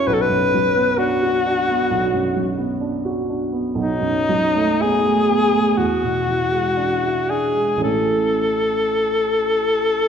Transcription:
0.07 B1 B4
0.13 A4
0.21 B4
0.29 F#2
0.54 F#3
0.75 B3
0.98 D4 F#4
1.22 F#4
1.46 D4
1.69 B3
1.91 B1
2.14 F#2
2.36 F#3
2.57 B3
2.81 D4
3.05 F#4
3.29 D4
3.52 B3
3.75 B1 D#4
4.00 F#2
4.29 F#3
4.55 A3
4.82 B3 G#4
5.06 A3
5.29 B3
5.53 A3
5.77 E2 F#4
6.03 B2
6.28 E3
6.51 G#3
6.77 D4
7.03 E4
7.29 D4 G#4
7.54 G#3
7.77 A1 E3 A3 C#4
7.83 A4

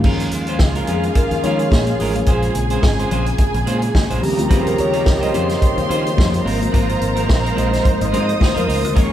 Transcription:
0.04 D#2 C#3 D#3 F3 G#3 A#3 C#4 F4 G#4 A#4 F5, kick, crash, muted conga
0.20 closed hi-hat
0.31 D#2, muted clean electric guitar stroke, closed hi-hat
0.47 G#3 C#4 F4 C5, closed hi-hat
0.59 C#2, kick, snare, high conga
0.75 G#3 C#4 F4 A#4, closed hi-hat
0.87 F2 G#3 C#4 F4 G#4 A#4, closed hi-hat, muted conga
1.03 muted clean electric guitar stroke, closed hi-hat
1.15 A#4, kick, closed hi-hat
1.31 D#2, muted clean electric guitar stroke, closed hi-hat
1.43 D#3 F3 G#3 C#4 F4 A#4 C#5, closed hi-hat, muted conga
1.59 muted clean electric guitar stroke, closed hi-hat
1.71 A#2, kick, snare, high conga
1.87 muted clean electric guitar stroke, closed hi-hat
1.99 A1 G#3 C#4 F4 G#4 A#4, open hi-hat
2.15 muted clean electric guitar stroke, closed hi-hat, high conga
2.26 A#1 G#3 A#3 C#4 F4 G#4 C5 G#5, kick, closed hi-hat, muted conga
2.42 closed hi-hat
2.54 A#1 C#3 G#3 C4, muted clean electric guitar stroke, closed hi-hat
2.70 G#3 C#4 F4 C5, closed hi-hat
2.83 G#1, muted clean electric guitar stroke, kick, snare, high conga
2.99 G#3 C#4 F4 C5, closed hi-hat
3.11 A#1 G#3 C#4 F4 C5, closed hi-hat, low conga
3.26 muted clean electric guitar stroke, closed hi-hat
3.38 kick, closed hi-hat, low conga
3.54 A#1, muted clean electric guitar stroke, closed hi-hat
3.66 A#2 G#3 C#4 F4 C5, closed hi-hat, muted conga, low conga
3.82 muted clean electric guitar stroke, closed hi-hat
3.95 muted clean electric guitar stroke, kick, snare, high conga
4.10 A#1 G#3 C#4 F4 C5, closed hi-hat
4.21 D#2 C#3 D#3 F3 G3 C4 D#4 F4 G4 A#4 A#5, muted clean electric guitar stroke, open hi-hat
4.38 D2 F4, muted clean electric guitar stroke, closed hi-hat, high conga
4.49 D#2 F#3 C4 E4 G4 B4, kick, closed hi-hat, muted conga
4.60 G3 C#4 F4 C5
4.67 A#4, closed hi-hat
4.78 D#2 C#5, muted clean electric guitar stroke, closed hi-hat
4.93 G3 C#4 F4 C#5, closed hi-hat
5.05 C#2, muted clean electric guitar stroke, kick, snare, high conga
5.21 G3 C#4 F4 C5 D#5, closed hi-hat
5.33 F2 G3 C#4 F4 C5 C6, closed hi-hat, muted conga
5.49 muted clean electric guitar stroke, snare, closed hi-hat
5.62 kick, closed hi-hat
5.77 D#2, muted clean electric guitar stroke, closed hi-hat
5.89 D#3 G3 C#4 F4 C5, closed hi-hat, muted conga
6.05 muted clean electric guitar stroke, closed hi-hat
6.17 F2, kick, snare, high conga
6.32 muted clean electric guitar stroke, closed hi-hat
6.44 G#1 F3 G#3 A#3 C4 D#4 F4 A#4 C5 A#5, open hi-hat
6.60 muted clean electric guitar stroke, closed hi-hat, high conga
6.72 G#1 G#3 C4 F4 A#4, kick, closed hi-hat, muted conga
6.89 closed hi-hat
7.00 G#1, muted clean electric guitar stroke, closed hi-hat
7.16 G#3 C4 F4 A#4, closed hi-hat
7.28 A#1, muted clean electric guitar stroke, kick, snare, high conga
7.44 G#3 C4 F4 A#4, closed hi-hat
7.56 A#1 G#3 C4 F4 A#4 D#5, closed hi-hat, muted conga, low conga
7.71 C5, muted clean electric guitar stroke, snare, closed hi-hat
7.85 C5, kick, closed hi-hat, low conga
8.00 G#1 D#5, muted clean electric guitar stroke, closed hi-hat
8.12 G#2 G#3 C4 F4 A#4 C5 D#5 D#6, closed hi-hat, muted conga, low conga
8.28 muted clean electric guitar stroke, closed hi-hat
8.39 muted clean electric guitar stroke, kick, snare, high conga
8.54 F2 G#3 C4 F4 A#4, closed hi-hat
8.67 C#2 G#3 C4 F4 A#4, open hi-hat
8.82 D2, muted clean electric guitar stroke, closed hi-hat, high conga
8.94 D#2 C#3 D#3 F3 G#3 A#3 C#4 F4 G#4 A#4 C#5 C#6, kick, closed hi-hat, muted conga

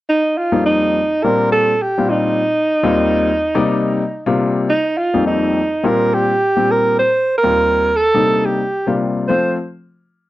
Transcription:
0.09 D#4
0.38 F4
0.52 F2 G3 A#3 C4 D#4
0.66 D#4
1.23 A#2 G3 C4 D4 F4 A#4
1.52 A4
1.82 G4
1.98 A#2 G3 C4 D4 F4
2.10 D#4
2.83 D#2 G3 A#3 C4 F4
3.55 C3 G3 A#3 D#4 D5
4.26 C3 G3 A#3 D4 F4
4.69 D#4
4.97 F4
5.14 F2 G3 A#3 C4 D#4
5.27 D#4
5.83 A#2 G3 C4 D4 F4 A#4
6.14 G4
6.56 A#2 G3 C4 D4 G4
6.71 A#4
6.99 C5
7.37 A#4
7.43 D#2 G3 A#3 C4 F4
7.96 A4
8.14 C3 G3 A#3 D4 D#4
8.46 G4
8.87 C3 G3 A#3 D4 F4
9.28 F3 A3 C4 F4 C5

